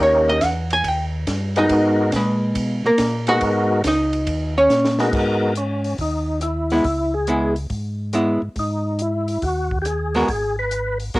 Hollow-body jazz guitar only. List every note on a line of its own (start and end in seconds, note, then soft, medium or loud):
0.03 0.29 C#5 medium
0.30 0.45 D#5 loud
0.45 0.72 F#5 medium
0.73 0.88 G#5 loud
0.88 1.05 G5 loud
1.58 2.11 D#4 medium
1.58 2.10 D#5 medium
2.16 2.83 G#3 medium
2.16 2.82 B4 medium
2.86 3.26 A#3 medium
2.86 3.25 A#4 medium
3.28 3.81 F#4 medium
3.28 3.81 F#5 loud
3.87 4.54 D#4 medium
3.87 4.54 D#5 medium
4.58 4.97 C#4 medium
4.58 4.97 C#5 medium
6.72 6.84 G#3 medium
6.72 6.84 B3 medium
6.72 6.84 E4 medium
7.28 7.54 G#3 soft
7.28 7.54 B3 medium
7.28 7.55 E4 soft
8.13 8.40 G#3 soft
8.13 8.40 B3 medium
8.13 8.40 E4 medium
10.15 10.27 G#3 medium
10.15 10.28 B3 medium
10.15 10.28 F#4 medium
10.15 10.28 A#4 medium
11.15 11.20 G#3 medium
11.15 11.20 B3 medium
11.15 11.20 F#4 medium
11.15 11.20 A#4 medium